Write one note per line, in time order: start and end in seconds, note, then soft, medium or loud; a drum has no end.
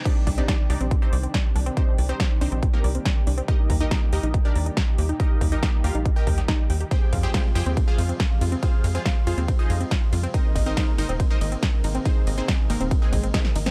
0.00 3.44 C3 medium
0.00 6.87 D#3 medium
0.05 10.30 G3 medium
0.05 0.12 C4 medium
0.05 3.45 D4 medium
0.05 0.28 D4 medium
0.05 0.28 D#4 medium
0.05 0.28 G4 medium
0.05 6.87 G4 medium
0.05 0.28 D5 loud
0.05 kick loud
0.05 closed hi-hat medium
0.05 crash medium
0.27 0.42 C2 loud
0.27 0.34 D5 medium
0.27 kick medium
0.27 open hi-hat loud
0.38 0.40 C4 medium
0.38 0.60 D4 medium
0.38 0.60 D#4 medium
0.38 0.60 G4 medium
0.38 0.60 D5 medium
0.38 closed hi-hat medium
0.48 0.51 D5 medium
0.48 kick loud
0.48 snare loud
0.48 closed hi-hat medium
0.70 0.77 C2 medium
0.70 0.74 D4 medium
0.70 0.92 D4 medium
0.70 0.92 D#4 medium
0.70 0.92 G4 medium
0.70 0.92 D5 loud
0.70 open hi-hat loud
0.81 0.95 A#1 medium
0.81 0.85 C4 loud
0.81 closed hi-hat medium
0.91 0.98 C4 medium
0.91 kick loud
0.91 closed hi-hat medium
1.02 1.25 C4 medium
1.02 1.25 D#4 medium
1.02 1.25 G4 medium
1.02 1.25 C5 medium
1.13 1.27 C2 loud
1.13 1.20 D5 medium
1.13 open hi-hat loud
1.23 1.26 C4 medium
1.23 closed hi-hat medium
1.34 1.37 D5 medium
1.34 kick loud
1.34 snare loud
1.34 closed hi-hat medium
1.55 1.70 C2 loud
1.55 1.60 D4 medium
1.55 open hi-hat loud
1.66 1.71 C4 loud
1.66 closed hi-hat medium
1.77 1.84 C4 medium
1.77 2.00 C4 medium
1.77 2.00 D#4 medium
1.77 2.00 G4 medium
1.77 2.00 C5 loud
1.77 kick loud
1.77 closed hi-hat medium
1.98 2.13 C2 loud
1.98 2.05 D5 medium
1.98 open hi-hat loud
2.09 2.12 C4 medium
2.09 2.32 C4 medium
2.09 2.32 D#4 medium
2.09 2.32 G4 medium
2.09 2.32 C5 loud
2.09 closed hi-hat medium
2.20 2.23 D5 medium
2.20 kick loud
2.20 snare loud
2.20 closed hi-hat medium
2.41 2.49 C2 medium
2.41 2.64 C4 medium
2.41 2.46 D4 medium
2.41 2.64 D#4 medium
2.41 2.64 G4 medium
2.41 2.64 C5 loud
2.41 open hi-hat loud
2.52 2.67 A#1 medium
2.52 2.57 C4 loud
2.52 closed hi-hat medium
2.63 2.70 C4 medium
2.63 kick loud
2.63 closed hi-hat medium
2.73 2.96 A#3 medium
2.73 2.96 D#4 medium
2.73 2.96 G4 medium
2.73 2.96 A#4 loud
2.84 2.99 C2 loud
2.84 2.91 D5 medium
2.84 open hi-hat loud
2.95 2.98 C4 medium
2.95 closed hi-hat medium
3.05 3.08 D5 medium
3.05 kick loud
3.05 snare loud
3.05 closed hi-hat medium
3.27 3.42 C2 loud
3.27 3.32 D4 medium
3.27 open hi-hat loud
3.38 3.42 C4 loud
3.38 closed hi-hat medium
3.48 6.88 A#2 medium
3.48 3.71 D#4 medium
3.48 6.88 D#4 medium
3.48 3.55 D#4 medium
3.48 3.71 G4 medium
3.48 3.71 A#4 medium
3.48 3.71 D#5 loud
3.48 kick loud
3.48 closed hi-hat medium
3.70 3.85 D#2 loud
3.70 3.77 A#5 medium
3.70 kick medium
3.70 open hi-hat loud
3.81 4.03 D#4 medium
3.81 3.83 D#4 medium
3.81 4.03 G4 medium
3.81 4.03 A#4 medium
3.81 4.03 D#5 medium
3.81 closed hi-hat medium
3.91 3.94 A#5 medium
3.91 kick loud
3.91 snare loud
3.91 closed hi-hat medium
4.13 4.20 D#2 medium
4.13 4.35 D#4 medium
4.13 4.17 G4 medium
4.13 4.35 G4 medium
4.13 4.35 A#4 medium
4.13 4.35 D#5 loud
4.13 open hi-hat loud
4.23 4.38 A#1 medium
4.23 4.28 D#4 loud
4.23 closed hi-hat medium
4.34 4.41 D#4 medium
4.34 kick loud
4.34 closed hi-hat medium
4.45 4.68 D4 medium
4.45 4.68 G4 medium
4.45 4.68 A#4 medium
4.45 4.68 D5 medium
4.55 4.70 D#2 loud
4.55 4.62 A#5 medium
4.55 open hi-hat loud
4.66 4.69 D#4 medium
4.66 closed hi-hat medium
4.77 4.80 A#5 medium
4.77 kick loud
4.77 snare loud
4.77 closed hi-hat medium
4.98 5.13 D#2 loud
4.98 5.03 G4 medium
4.98 open hi-hat loud
5.09 5.14 D#4 loud
5.09 closed hi-hat medium
5.20 5.27 D#4 medium
5.20 5.43 D#4 medium
5.20 5.43 G4 medium
5.20 5.43 A#4 medium
5.20 5.42 D#5 loud
5.20 kick loud
5.20 closed hi-hat medium
5.41 5.56 D#2 loud
5.41 5.48 A#5 medium
5.41 kick medium
5.41 open hi-hat loud
5.52 5.75 D#4 medium
5.52 5.55 D#4 medium
5.52 5.75 G4 medium
5.52 5.75 A#4 medium
5.52 5.75 D#5 medium
5.52 closed hi-hat medium
5.63 5.65 A#5 medium
5.63 kick loud
5.63 snare loud
5.63 closed hi-hat medium
5.84 5.91 D#2 medium
5.84 6.07 F4 medium
5.84 6.07 G4 medium
5.84 5.89 G4 medium
5.84 6.07 A#4 medium
5.84 6.07 F5 loud
5.84 open hi-hat loud
5.95 6.10 A#1 medium
5.95 5.99 D#4 loud
5.95 closed hi-hat medium
6.06 6.12 D#4 medium
6.06 kick loud
6.06 closed hi-hat medium
6.16 6.39 G4 medium
6.16 6.39 A#4 medium
6.16 6.39 D#5 medium
6.16 6.39 G5 medium
6.27 6.42 D#2 loud
6.27 6.32 A#5 medium
6.27 kick medium
6.27 open hi-hat loud
6.38 6.45 G4 medium
6.38 snare soft
6.38 closed hi-hat medium
6.48 6.51 D#4 loud
6.48 kick loud
6.48 snare loud
6.48 closed hi-hat medium
6.70 6.85 D#2 medium
6.70 6.77 G5 medium
6.70 open hi-hat loud
6.81 6.85 G4 medium
6.81 closed hi-hat medium
6.91 10.31 C3 medium
6.91 10.31 F3 medium
6.91 10.31 G#3 medium
6.91 6.98 C4 medium
6.91 10.31 F4 medium
6.91 7.14 G4 medium
6.91 7.14 G#4 medium
6.91 7.14 C5 medium
6.91 7.14 G5 loud
6.91 kick loud
6.91 closed hi-hat medium
6.91 ride medium
7.13 7.27 F2 loud
7.13 7.20 F5 medium
7.13 kick medium
7.13 open hi-hat loud
7.13 ride medium
7.23 7.26 C4 medium
7.23 7.46 G4 medium
7.23 7.46 G#4 medium
7.23 7.46 C5 medium
7.23 7.46 G5 loud
7.23 closed hi-hat medium
7.34 7.37 F5 medium
7.34 kick loud
7.34 snare loud
7.34 closed hi-hat medium
7.34 ride medium
7.55 7.63 F2 medium
7.55 7.60 F4 medium
7.55 7.78 G4 medium
7.55 7.78 G#4 medium
7.55 7.78 C5 medium
7.55 7.78 G5 loud
7.55 open hi-hat loud
7.55 ride medium
7.66 7.81 D#2 medium
7.66 7.71 C4 loud
7.66 closed hi-hat medium
7.77 7.84 C4 medium
7.77 kick loud
7.77 closed hi-hat medium
7.77 ride medium
7.88 8.10 F4 medium
7.88 8.10 G#4 medium
7.88 8.10 C5 medium
7.88 8.10 F5 medium
7.98 8.13 F2 loud
7.98 8.05 F5 medium
7.98 open hi-hat loud
7.98 ride medium
8.09 8.12 C4 medium
8.09 closed hi-hat medium
8.20 8.23 F5 medium
8.20 kick loud
8.20 snare loud
8.20 closed hi-hat medium
8.20 ride medium
8.41 8.56 F2 loud
8.41 8.46 F4 medium
8.41 open hi-hat loud
8.41 ride medium
8.52 8.57 C4 loud
8.52 closed hi-hat medium
8.63 8.70 C4 medium
8.63 8.85 F4 medium
8.63 8.85 G#4 medium
8.63 8.85 C5 medium
8.63 8.85 F5 loud
8.63 kick loud
8.63 closed hi-hat medium
8.63 ride medium
8.84 8.99 F2 loud
8.84 8.91 F5 medium
8.84 open hi-hat loud
8.84 ride medium
8.95 8.98 C4 medium
8.95 9.17 F4 medium
8.95 9.17 G#4 medium
8.95 9.17 C5 medium
8.95 9.17 F5 loud
8.95 closed hi-hat medium
9.06 9.08 F5 medium
9.06 kick loud
9.06 snare loud
9.06 closed hi-hat medium
9.06 ride medium
9.27 9.34 F2 medium
9.27 9.50 F4 medium
9.27 9.32 F4 medium
9.27 9.50 G#4 medium
9.27 9.50 C5 medium
9.27 9.50 F5 loud
9.27 open hi-hat loud
9.27 ride medium
9.38 9.52 D#2 loud
9.38 9.42 C4 loud
9.38 closed hi-hat medium
9.48 9.55 C4 medium
9.48 kick loud
9.48 closed hi-hat medium
9.48 ride medium
9.59 9.82 D#4 medium
9.59 9.82 G#4 medium
9.59 9.82 C5 medium
9.59 9.82 D#5 loud
9.70 9.85 F2 loud
9.70 9.77 F5 medium
9.70 open hi-hat loud
9.70 ride medium
9.81 9.83 C4 medium
9.81 closed hi-hat medium
9.91 9.94 F5 medium
9.91 kick loud
9.91 snare loud
9.91 closed hi-hat medium
9.91 ride medium
10.12 10.27 F2 loud
10.12 10.17 F4 medium
10.12 open hi-hat loud
10.12 ride medium
10.23 10.28 C4 loud
10.23 closed hi-hat medium
10.34 13.71 C3 medium
10.34 13.71 D#3 medium
10.34 13.71 G#3 medium
10.34 13.71 A#3 medium
10.34 10.41 C4 medium
10.34 10.57 D#4 medium
10.34 13.71 D#4 medium
10.34 10.57 A#4 medium
10.34 10.57 C5 medium
10.34 10.57 D#5 loud
10.34 kick loud
10.34 closed hi-hat medium
10.34 ride medium
10.56 10.70 G#1 loud
10.56 10.62 D#5 medium
10.56 kick medium
10.56 open hi-hat loud
10.56 ride medium
10.66 10.69 C4 medium
10.66 10.89 D#4 medium
10.66 10.89 A#4 medium
10.66 10.89 C5 medium
10.66 10.89 D#5 medium
10.66 closed hi-hat medium
10.77 10.80 D#5 medium
10.77 kick loud
10.77 snare loud
10.77 closed hi-hat medium
10.77 ride medium
10.98 11.06 G#1 medium
10.98 11.21 D#4 medium
10.98 11.03 D#4 medium
10.98 11.21 A#4 medium
10.98 11.21 C5 medium
10.98 11.21 D#5 loud
10.98 open hi-hat loud
10.98 ride medium
11.09 11.24 D#1 medium
11.09 11.14 C4 loud
11.09 closed hi-hat medium
11.20 11.27 C4 medium
11.20 kick loud
11.20 closed hi-hat medium
11.20 ride medium
11.30 11.53 D#4 medium
11.30 11.53 A#4 medium
11.30 11.53 C5 medium
11.30 11.53 D#5 loud
11.41 11.56 G#1 loud
11.41 11.48 D#5 medium
11.41 open hi-hat loud
11.41 ride medium
11.52 11.55 C4 medium
11.52 closed hi-hat medium
11.63 11.65 D#5 medium
11.63 kick loud
11.63 snare loud
11.63 closed hi-hat medium
11.63 ride medium
11.84 11.99 G#1 loud
11.84 11.89 D#4 medium
11.84 open hi-hat loud
11.84 ride medium
11.95 11.99 C4 loud
11.95 closed hi-hat medium
12.05 12.28 C4 medium
12.05 12.12 C4 medium
12.05 12.28 D#4 medium
12.05 12.28 G#4 medium
12.05 12.28 C5 loud
12.05 kick loud
12.05 closed hi-hat medium
12.05 ride medium
12.27 12.42 G#1 loud
12.27 12.34 D#5 medium
12.27 open hi-hat loud
12.27 ride medium
12.38 12.60 C4 medium
12.38 12.41 C4 medium
12.38 12.60 D#4 medium
12.38 12.60 G#4 medium
12.38 12.60 C5 medium
12.38 closed hi-hat medium
12.48 12.51 D#5 medium
12.48 kick loud
12.48 snare loud
12.48 closed hi-hat medium
12.48 ride medium
12.70 12.77 G#1 medium
12.70 12.92 A#3 medium
12.70 12.92 C4 medium
12.70 12.92 D#4 medium
12.70 12.75 D#4 medium
12.70 12.92 A#4 loud
12.70 open hi-hat loud
12.70 ride medium
12.80 12.95 D#1 medium
12.80 12.85 C4 loud
12.80 closed hi-hat medium
12.91 12.98 C4 medium
12.91 kick loud
12.91 closed hi-hat medium
12.91 ride medium
13.02 13.25 G#3 medium
13.02 13.25 C4 medium
13.02 13.25 D#4 medium
13.02 13.25 G#4 loud
13.13 13.27 G#1 loud
13.13 13.20 D#5 medium
13.13 kick medium
13.13 open hi-hat loud
13.13 ride medium
13.23 13.26 C4 medium
13.23 closed hi-hat medium
13.34 13.37 D#5 medium
13.34 kick loud
13.34 snare loud
13.34 closed hi-hat medium
13.34 ride medium
13.45 snare medium
13.55 13.70 G#1 medium
13.55 13.60 D#4 medium
13.55 open hi-hat loud
13.55 ride medium
13.66 13.71 C4 loud
13.66 snare loud
13.66 closed hi-hat medium